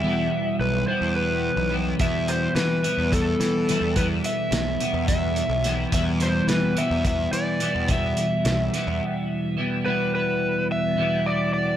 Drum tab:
HH |-------|xxxxxxx|xxxxxxx|xxxxxxx|
SD |-------|--o--oo|--o---o|-oo----|
BD |-------|o---o--|o---o--|o---o--|

HH |xxxx---|-------|
SD |--oo---|-------|
BD |o------|-------|